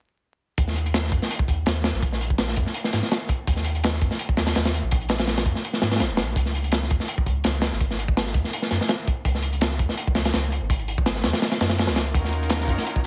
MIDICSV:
0, 0, Header, 1, 4, 480
1, 0, Start_track
1, 0, Key_signature, -6, "minor"
1, 0, Tempo, 361446
1, 769, Time_signature, 4, 2, 24, 8
1, 17354, End_track
2, 0, Start_track
2, 0, Title_t, "String section"
2, 0, Program_c, 0, 48
2, 16134, Note_on_c, 0, 66, 78
2, 16135, Note_on_c, 0, 61, 83
2, 16136, Note_on_c, 0, 70, 100
2, 16137, Note_on_c, 0, 63, 79
2, 16137, Note_on_c, 0, 65, 78
2, 17304, Note_off_c, 0, 66, 0
2, 17305, Note_off_c, 0, 61, 0
2, 17305, Note_off_c, 0, 70, 0
2, 17306, Note_off_c, 0, 63, 0
2, 17306, Note_off_c, 0, 65, 0
2, 17354, End_track
3, 0, Start_track
3, 0, Title_t, "Sub bass"
3, 0, Program_c, 1, 38
3, 770, Note_on_c, 1, 39, 98
3, 1485, Note_on_c, 1, 42, 104
3, 1505, Note_off_c, 1, 39, 0
3, 1601, Note_off_c, 1, 42, 0
3, 1966, Note_on_c, 1, 39, 80
3, 2185, Note_off_c, 1, 39, 0
3, 2211, Note_on_c, 1, 39, 85
3, 2556, Note_off_c, 1, 39, 0
3, 2576, Note_on_c, 1, 34, 104
3, 3415, Note_on_c, 1, 42, 102
3, 3435, Note_off_c, 1, 34, 0
3, 3526, Note_off_c, 1, 42, 0
3, 3889, Note_on_c, 1, 44, 89
3, 4003, Note_off_c, 1, 44, 0
3, 4614, Note_on_c, 1, 39, 101
3, 5334, Note_on_c, 1, 42, 103
3, 5354, Note_off_c, 1, 39, 0
3, 5445, Note_off_c, 1, 42, 0
3, 5811, Note_on_c, 1, 39, 88
3, 6027, Note_off_c, 1, 39, 0
3, 6050, Note_on_c, 1, 39, 83
3, 6396, Note_off_c, 1, 39, 0
3, 6414, Note_on_c, 1, 34, 106
3, 7246, Note_on_c, 1, 42, 106
3, 7266, Note_off_c, 1, 34, 0
3, 7361, Note_off_c, 1, 42, 0
3, 7729, Note_on_c, 1, 44, 88
3, 7969, Note_on_c, 1, 34, 88
3, 7989, Note_off_c, 1, 44, 0
3, 8094, Note_on_c, 1, 27, 79
3, 8114, Note_off_c, 1, 34, 0
3, 8209, Note_on_c, 1, 34, 89
3, 8229, Note_off_c, 1, 27, 0
3, 8426, Note_off_c, 1, 34, 0
3, 8447, Note_on_c, 1, 37, 93
3, 9177, Note_on_c, 1, 40, 104
3, 9197, Note_off_c, 1, 37, 0
3, 9287, Note_off_c, 1, 40, 0
3, 9647, Note_on_c, 1, 37, 82
3, 9865, Note_off_c, 1, 37, 0
3, 9894, Note_on_c, 1, 37, 83
3, 10237, Note_off_c, 1, 37, 0
3, 10257, Note_on_c, 1, 32, 101
3, 11082, Note_on_c, 1, 40, 106
3, 11102, Note_off_c, 1, 32, 0
3, 11199, Note_off_c, 1, 40, 0
3, 11566, Note_on_c, 1, 42, 82
3, 11681, Note_off_c, 1, 42, 0
3, 12285, Note_on_c, 1, 37, 97
3, 13005, Note_on_c, 1, 40, 104
3, 13025, Note_off_c, 1, 37, 0
3, 13121, Note_off_c, 1, 40, 0
3, 13488, Note_on_c, 1, 37, 85
3, 13706, Note_off_c, 1, 37, 0
3, 13728, Note_on_c, 1, 37, 85
3, 14075, Note_off_c, 1, 37, 0
3, 14094, Note_on_c, 1, 32, 102
3, 14928, Note_on_c, 1, 40, 101
3, 14948, Note_off_c, 1, 32, 0
3, 15042, Note_off_c, 1, 40, 0
3, 15409, Note_on_c, 1, 42, 92
3, 15776, Note_on_c, 1, 37, 72
3, 15795, Note_off_c, 1, 42, 0
3, 16111, Note_off_c, 1, 37, 0
3, 16127, Note_on_c, 1, 39, 98
3, 16838, Note_on_c, 1, 42, 106
3, 16858, Note_off_c, 1, 39, 0
3, 16957, Note_off_c, 1, 42, 0
3, 17354, End_track
4, 0, Start_track
4, 0, Title_t, "Drums"
4, 768, Note_on_c, 9, 42, 81
4, 769, Note_on_c, 9, 36, 103
4, 897, Note_on_c, 9, 38, 36
4, 901, Note_off_c, 9, 42, 0
4, 902, Note_off_c, 9, 36, 0
4, 1005, Note_on_c, 9, 42, 60
4, 1030, Note_off_c, 9, 38, 0
4, 1138, Note_off_c, 9, 42, 0
4, 1140, Note_on_c, 9, 42, 44
4, 1250, Note_on_c, 9, 38, 125
4, 1253, Note_off_c, 9, 42, 0
4, 1253, Note_on_c, 9, 42, 93
4, 1383, Note_off_c, 9, 38, 0
4, 1383, Note_on_c, 9, 38, 35
4, 1386, Note_off_c, 9, 42, 0
4, 1483, Note_on_c, 9, 42, 59
4, 1486, Note_on_c, 9, 36, 100
4, 1516, Note_off_c, 9, 38, 0
4, 1616, Note_off_c, 9, 42, 0
4, 1619, Note_off_c, 9, 36, 0
4, 1623, Note_on_c, 9, 38, 50
4, 1733, Note_on_c, 9, 42, 99
4, 1756, Note_off_c, 9, 38, 0
4, 1849, Note_on_c, 9, 36, 95
4, 1866, Note_off_c, 9, 42, 0
4, 1967, Note_off_c, 9, 36, 0
4, 1967, Note_on_c, 9, 36, 89
4, 1975, Note_on_c, 9, 42, 70
4, 2100, Note_off_c, 9, 36, 0
4, 2108, Note_off_c, 9, 42, 0
4, 2206, Note_on_c, 9, 42, 86
4, 2213, Note_on_c, 9, 38, 127
4, 2333, Note_off_c, 9, 42, 0
4, 2333, Note_on_c, 9, 42, 44
4, 2346, Note_off_c, 9, 38, 0
4, 2444, Note_on_c, 9, 38, 112
4, 2448, Note_off_c, 9, 42, 0
4, 2448, Note_on_c, 9, 42, 80
4, 2577, Note_off_c, 9, 38, 0
4, 2577, Note_on_c, 9, 38, 30
4, 2580, Note_off_c, 9, 42, 0
4, 2690, Note_on_c, 9, 36, 77
4, 2693, Note_on_c, 9, 42, 58
4, 2710, Note_off_c, 9, 38, 0
4, 2821, Note_on_c, 9, 38, 38
4, 2823, Note_off_c, 9, 36, 0
4, 2826, Note_off_c, 9, 42, 0
4, 2932, Note_on_c, 9, 42, 69
4, 2954, Note_off_c, 9, 38, 0
4, 3059, Note_on_c, 9, 36, 85
4, 3065, Note_off_c, 9, 42, 0
4, 3163, Note_on_c, 9, 42, 84
4, 3165, Note_on_c, 9, 38, 127
4, 3191, Note_off_c, 9, 36, 0
4, 3293, Note_off_c, 9, 38, 0
4, 3293, Note_on_c, 9, 38, 52
4, 3296, Note_off_c, 9, 42, 0
4, 3404, Note_on_c, 9, 42, 64
4, 3414, Note_on_c, 9, 36, 93
4, 3426, Note_off_c, 9, 38, 0
4, 3537, Note_off_c, 9, 42, 0
4, 3537, Note_on_c, 9, 38, 39
4, 3547, Note_off_c, 9, 36, 0
4, 3641, Note_on_c, 9, 42, 92
4, 3670, Note_off_c, 9, 38, 0
4, 3773, Note_off_c, 9, 42, 0
4, 3774, Note_on_c, 9, 38, 42
4, 3886, Note_on_c, 9, 42, 74
4, 3893, Note_off_c, 9, 38, 0
4, 3893, Note_on_c, 9, 38, 51
4, 4019, Note_off_c, 9, 38, 0
4, 4019, Note_off_c, 9, 42, 0
4, 4019, Note_on_c, 9, 38, 42
4, 4133, Note_on_c, 9, 42, 84
4, 4138, Note_off_c, 9, 38, 0
4, 4138, Note_on_c, 9, 38, 120
4, 4266, Note_off_c, 9, 42, 0
4, 4270, Note_off_c, 9, 38, 0
4, 4367, Note_on_c, 9, 42, 71
4, 4369, Note_on_c, 9, 36, 88
4, 4500, Note_off_c, 9, 42, 0
4, 4502, Note_off_c, 9, 36, 0
4, 4614, Note_on_c, 9, 36, 108
4, 4616, Note_on_c, 9, 42, 90
4, 4732, Note_on_c, 9, 38, 36
4, 4747, Note_off_c, 9, 36, 0
4, 4749, Note_off_c, 9, 42, 0
4, 4841, Note_on_c, 9, 42, 70
4, 4865, Note_off_c, 9, 38, 0
4, 4974, Note_off_c, 9, 42, 0
4, 4978, Note_on_c, 9, 42, 43
4, 5094, Note_off_c, 9, 42, 0
4, 5094, Note_on_c, 9, 42, 92
4, 5106, Note_on_c, 9, 38, 112
4, 5225, Note_off_c, 9, 38, 0
4, 5225, Note_on_c, 9, 38, 39
4, 5227, Note_off_c, 9, 42, 0
4, 5330, Note_on_c, 9, 42, 60
4, 5334, Note_on_c, 9, 36, 84
4, 5358, Note_off_c, 9, 38, 0
4, 5455, Note_on_c, 9, 38, 46
4, 5463, Note_off_c, 9, 42, 0
4, 5467, Note_off_c, 9, 36, 0
4, 5567, Note_on_c, 9, 42, 81
4, 5588, Note_off_c, 9, 38, 0
4, 5696, Note_on_c, 9, 36, 95
4, 5700, Note_off_c, 9, 42, 0
4, 5805, Note_on_c, 9, 38, 102
4, 5815, Note_on_c, 9, 42, 81
4, 5829, Note_off_c, 9, 36, 0
4, 5931, Note_off_c, 9, 38, 0
4, 5931, Note_on_c, 9, 38, 91
4, 5936, Note_off_c, 9, 42, 0
4, 5936, Note_on_c, 9, 42, 71
4, 6044, Note_off_c, 9, 42, 0
4, 6044, Note_on_c, 9, 42, 78
4, 6054, Note_off_c, 9, 38, 0
4, 6054, Note_on_c, 9, 38, 101
4, 6177, Note_off_c, 9, 42, 0
4, 6177, Note_on_c, 9, 42, 81
4, 6180, Note_off_c, 9, 38, 0
4, 6180, Note_on_c, 9, 38, 108
4, 6295, Note_off_c, 9, 42, 0
4, 6295, Note_on_c, 9, 42, 70
4, 6313, Note_off_c, 9, 38, 0
4, 6428, Note_off_c, 9, 42, 0
4, 6525, Note_on_c, 9, 42, 92
4, 6537, Note_on_c, 9, 36, 98
4, 6656, Note_off_c, 9, 42, 0
4, 6656, Note_on_c, 9, 42, 46
4, 6669, Note_off_c, 9, 36, 0
4, 6755, Note_off_c, 9, 42, 0
4, 6755, Note_on_c, 9, 42, 74
4, 6768, Note_on_c, 9, 38, 100
4, 6884, Note_off_c, 9, 42, 0
4, 6884, Note_on_c, 9, 42, 78
4, 6899, Note_off_c, 9, 38, 0
4, 6899, Note_on_c, 9, 38, 110
4, 7002, Note_off_c, 9, 42, 0
4, 7002, Note_on_c, 9, 42, 77
4, 7003, Note_off_c, 9, 38, 0
4, 7003, Note_on_c, 9, 38, 97
4, 7134, Note_off_c, 9, 42, 0
4, 7136, Note_off_c, 9, 38, 0
4, 7140, Note_on_c, 9, 38, 98
4, 7141, Note_on_c, 9, 42, 81
4, 7246, Note_off_c, 9, 42, 0
4, 7246, Note_on_c, 9, 36, 89
4, 7246, Note_on_c, 9, 42, 64
4, 7273, Note_off_c, 9, 38, 0
4, 7376, Note_on_c, 9, 38, 45
4, 7378, Note_off_c, 9, 36, 0
4, 7378, Note_off_c, 9, 42, 0
4, 7497, Note_on_c, 9, 42, 82
4, 7509, Note_off_c, 9, 38, 0
4, 7615, Note_on_c, 9, 38, 46
4, 7630, Note_off_c, 9, 42, 0
4, 7726, Note_off_c, 9, 38, 0
4, 7726, Note_on_c, 9, 38, 94
4, 7729, Note_on_c, 9, 42, 68
4, 7855, Note_off_c, 9, 38, 0
4, 7855, Note_on_c, 9, 38, 77
4, 7856, Note_off_c, 9, 42, 0
4, 7856, Note_on_c, 9, 42, 57
4, 7911, Note_off_c, 9, 42, 0
4, 7911, Note_on_c, 9, 42, 61
4, 7915, Note_off_c, 9, 38, 0
4, 7915, Note_on_c, 9, 38, 82
4, 7969, Note_off_c, 9, 42, 0
4, 7969, Note_on_c, 9, 42, 98
4, 7971, Note_off_c, 9, 38, 0
4, 7971, Note_on_c, 9, 38, 116
4, 8101, Note_off_c, 9, 42, 0
4, 8104, Note_off_c, 9, 38, 0
4, 8196, Note_on_c, 9, 38, 114
4, 8220, Note_on_c, 9, 42, 77
4, 8328, Note_off_c, 9, 38, 0
4, 8353, Note_off_c, 9, 42, 0
4, 8446, Note_on_c, 9, 36, 107
4, 8457, Note_on_c, 9, 42, 79
4, 8573, Note_on_c, 9, 38, 39
4, 8579, Note_off_c, 9, 36, 0
4, 8590, Note_off_c, 9, 42, 0
4, 8694, Note_on_c, 9, 42, 62
4, 8705, Note_off_c, 9, 38, 0
4, 8818, Note_off_c, 9, 42, 0
4, 8818, Note_on_c, 9, 42, 44
4, 8918, Note_off_c, 9, 42, 0
4, 8918, Note_on_c, 9, 42, 86
4, 8930, Note_on_c, 9, 38, 114
4, 9051, Note_off_c, 9, 42, 0
4, 9063, Note_off_c, 9, 38, 0
4, 9067, Note_on_c, 9, 38, 38
4, 9168, Note_on_c, 9, 42, 64
4, 9176, Note_on_c, 9, 36, 92
4, 9199, Note_off_c, 9, 38, 0
4, 9296, Note_on_c, 9, 38, 41
4, 9301, Note_off_c, 9, 42, 0
4, 9308, Note_off_c, 9, 36, 0
4, 9404, Note_on_c, 9, 42, 87
4, 9429, Note_off_c, 9, 38, 0
4, 9534, Note_on_c, 9, 36, 96
4, 9537, Note_off_c, 9, 42, 0
4, 9646, Note_on_c, 9, 42, 63
4, 9647, Note_off_c, 9, 36, 0
4, 9647, Note_on_c, 9, 36, 96
4, 9779, Note_off_c, 9, 42, 0
4, 9780, Note_off_c, 9, 36, 0
4, 9880, Note_on_c, 9, 42, 85
4, 9890, Note_on_c, 9, 38, 117
4, 10013, Note_off_c, 9, 42, 0
4, 10019, Note_on_c, 9, 42, 48
4, 10023, Note_off_c, 9, 38, 0
4, 10116, Note_on_c, 9, 38, 108
4, 10125, Note_off_c, 9, 42, 0
4, 10125, Note_on_c, 9, 42, 82
4, 10249, Note_off_c, 9, 38, 0
4, 10258, Note_off_c, 9, 42, 0
4, 10258, Note_on_c, 9, 38, 32
4, 10366, Note_on_c, 9, 36, 79
4, 10369, Note_on_c, 9, 42, 61
4, 10391, Note_off_c, 9, 38, 0
4, 10498, Note_on_c, 9, 38, 42
4, 10499, Note_off_c, 9, 36, 0
4, 10502, Note_off_c, 9, 42, 0
4, 10607, Note_on_c, 9, 42, 68
4, 10631, Note_off_c, 9, 38, 0
4, 10734, Note_on_c, 9, 36, 87
4, 10740, Note_off_c, 9, 42, 0
4, 10850, Note_on_c, 9, 38, 116
4, 10851, Note_on_c, 9, 42, 94
4, 10867, Note_off_c, 9, 36, 0
4, 10974, Note_off_c, 9, 38, 0
4, 10974, Note_on_c, 9, 38, 46
4, 10984, Note_off_c, 9, 42, 0
4, 11077, Note_on_c, 9, 42, 64
4, 11082, Note_on_c, 9, 36, 89
4, 11107, Note_off_c, 9, 38, 0
4, 11209, Note_off_c, 9, 42, 0
4, 11212, Note_on_c, 9, 38, 38
4, 11215, Note_off_c, 9, 36, 0
4, 11330, Note_on_c, 9, 42, 91
4, 11345, Note_off_c, 9, 38, 0
4, 11450, Note_on_c, 9, 38, 41
4, 11462, Note_off_c, 9, 42, 0
4, 11563, Note_off_c, 9, 38, 0
4, 11563, Note_on_c, 9, 38, 49
4, 11564, Note_on_c, 9, 42, 61
4, 11696, Note_off_c, 9, 38, 0
4, 11696, Note_off_c, 9, 42, 0
4, 11698, Note_on_c, 9, 38, 43
4, 11798, Note_on_c, 9, 42, 85
4, 11809, Note_off_c, 9, 38, 0
4, 11809, Note_on_c, 9, 38, 111
4, 11930, Note_off_c, 9, 42, 0
4, 11941, Note_off_c, 9, 38, 0
4, 12051, Note_on_c, 9, 42, 67
4, 12053, Note_on_c, 9, 36, 95
4, 12183, Note_off_c, 9, 42, 0
4, 12186, Note_off_c, 9, 36, 0
4, 12285, Note_on_c, 9, 36, 103
4, 12287, Note_on_c, 9, 42, 89
4, 12413, Note_on_c, 9, 38, 35
4, 12418, Note_off_c, 9, 36, 0
4, 12420, Note_off_c, 9, 42, 0
4, 12514, Note_on_c, 9, 42, 69
4, 12545, Note_off_c, 9, 38, 0
4, 12647, Note_off_c, 9, 42, 0
4, 12652, Note_on_c, 9, 42, 45
4, 12764, Note_off_c, 9, 42, 0
4, 12764, Note_on_c, 9, 42, 87
4, 12771, Note_on_c, 9, 38, 127
4, 12890, Note_off_c, 9, 38, 0
4, 12890, Note_on_c, 9, 38, 38
4, 12897, Note_off_c, 9, 42, 0
4, 13005, Note_on_c, 9, 36, 98
4, 13006, Note_on_c, 9, 42, 65
4, 13023, Note_off_c, 9, 38, 0
4, 13133, Note_on_c, 9, 38, 47
4, 13138, Note_off_c, 9, 36, 0
4, 13138, Note_off_c, 9, 42, 0
4, 13245, Note_on_c, 9, 42, 92
4, 13266, Note_off_c, 9, 38, 0
4, 13378, Note_off_c, 9, 42, 0
4, 13378, Note_on_c, 9, 36, 103
4, 13479, Note_on_c, 9, 38, 92
4, 13483, Note_on_c, 9, 42, 74
4, 13511, Note_off_c, 9, 36, 0
4, 13611, Note_off_c, 9, 38, 0
4, 13613, Note_off_c, 9, 42, 0
4, 13613, Note_on_c, 9, 42, 79
4, 13617, Note_on_c, 9, 38, 91
4, 13725, Note_off_c, 9, 38, 0
4, 13725, Note_on_c, 9, 38, 114
4, 13729, Note_off_c, 9, 42, 0
4, 13729, Note_on_c, 9, 42, 84
4, 13858, Note_off_c, 9, 38, 0
4, 13858, Note_off_c, 9, 42, 0
4, 13858, Note_on_c, 9, 42, 42
4, 13970, Note_off_c, 9, 42, 0
4, 13970, Note_on_c, 9, 42, 71
4, 14102, Note_off_c, 9, 42, 0
4, 14207, Note_on_c, 9, 36, 99
4, 14210, Note_on_c, 9, 42, 91
4, 14329, Note_off_c, 9, 42, 0
4, 14329, Note_on_c, 9, 42, 41
4, 14340, Note_off_c, 9, 36, 0
4, 14450, Note_off_c, 9, 42, 0
4, 14450, Note_on_c, 9, 42, 66
4, 14582, Note_off_c, 9, 42, 0
4, 14582, Note_on_c, 9, 36, 99
4, 14688, Note_on_c, 9, 38, 119
4, 14693, Note_on_c, 9, 42, 88
4, 14715, Note_off_c, 9, 36, 0
4, 14815, Note_off_c, 9, 38, 0
4, 14815, Note_on_c, 9, 38, 43
4, 14826, Note_off_c, 9, 42, 0
4, 14923, Note_off_c, 9, 38, 0
4, 14923, Note_on_c, 9, 38, 109
4, 14934, Note_on_c, 9, 42, 71
4, 15051, Note_off_c, 9, 38, 0
4, 15051, Note_on_c, 9, 38, 97
4, 15055, Note_off_c, 9, 42, 0
4, 15055, Note_on_c, 9, 42, 73
4, 15167, Note_off_c, 9, 38, 0
4, 15167, Note_on_c, 9, 38, 108
4, 15173, Note_off_c, 9, 42, 0
4, 15173, Note_on_c, 9, 42, 78
4, 15293, Note_off_c, 9, 42, 0
4, 15293, Note_on_c, 9, 42, 82
4, 15294, Note_off_c, 9, 38, 0
4, 15294, Note_on_c, 9, 38, 94
4, 15412, Note_off_c, 9, 42, 0
4, 15412, Note_on_c, 9, 42, 77
4, 15417, Note_off_c, 9, 38, 0
4, 15417, Note_on_c, 9, 38, 115
4, 15531, Note_off_c, 9, 38, 0
4, 15531, Note_on_c, 9, 38, 97
4, 15535, Note_off_c, 9, 42, 0
4, 15535, Note_on_c, 9, 42, 68
4, 15647, Note_off_c, 9, 42, 0
4, 15647, Note_on_c, 9, 42, 74
4, 15661, Note_off_c, 9, 38, 0
4, 15661, Note_on_c, 9, 38, 107
4, 15765, Note_off_c, 9, 38, 0
4, 15765, Note_on_c, 9, 38, 100
4, 15777, Note_off_c, 9, 42, 0
4, 15777, Note_on_c, 9, 42, 83
4, 15882, Note_off_c, 9, 38, 0
4, 15882, Note_on_c, 9, 38, 99
4, 15885, Note_off_c, 9, 42, 0
4, 15885, Note_on_c, 9, 42, 73
4, 16015, Note_off_c, 9, 38, 0
4, 16016, Note_off_c, 9, 42, 0
4, 16016, Note_on_c, 9, 42, 39
4, 16127, Note_on_c, 9, 36, 106
4, 16130, Note_on_c, 9, 82, 84
4, 16135, Note_off_c, 9, 42, 0
4, 16135, Note_on_c, 9, 42, 91
4, 16260, Note_off_c, 9, 36, 0
4, 16260, Note_on_c, 9, 38, 37
4, 16263, Note_off_c, 9, 82, 0
4, 16268, Note_off_c, 9, 42, 0
4, 16368, Note_on_c, 9, 42, 63
4, 16371, Note_on_c, 9, 82, 69
4, 16393, Note_off_c, 9, 38, 0
4, 16501, Note_off_c, 9, 42, 0
4, 16504, Note_off_c, 9, 82, 0
4, 16504, Note_on_c, 9, 42, 43
4, 16594, Note_off_c, 9, 42, 0
4, 16594, Note_on_c, 9, 42, 90
4, 16605, Note_on_c, 9, 38, 118
4, 16610, Note_off_c, 9, 38, 0
4, 16610, Note_on_c, 9, 38, 113
4, 16610, Note_on_c, 9, 82, 79
4, 16727, Note_off_c, 9, 42, 0
4, 16735, Note_off_c, 9, 38, 0
4, 16735, Note_on_c, 9, 38, 40
4, 16743, Note_off_c, 9, 82, 0
4, 16838, Note_on_c, 9, 36, 85
4, 16850, Note_on_c, 9, 42, 72
4, 16850, Note_on_c, 9, 82, 68
4, 16868, Note_off_c, 9, 38, 0
4, 16970, Note_off_c, 9, 36, 0
4, 16971, Note_on_c, 9, 38, 45
4, 16977, Note_off_c, 9, 42, 0
4, 16977, Note_on_c, 9, 42, 44
4, 16983, Note_off_c, 9, 82, 0
4, 17085, Note_off_c, 9, 42, 0
4, 17085, Note_on_c, 9, 42, 85
4, 17090, Note_on_c, 9, 82, 88
4, 17104, Note_off_c, 9, 38, 0
4, 17211, Note_on_c, 9, 36, 99
4, 17218, Note_off_c, 9, 42, 0
4, 17223, Note_off_c, 9, 82, 0
4, 17344, Note_off_c, 9, 36, 0
4, 17354, End_track
0, 0, End_of_file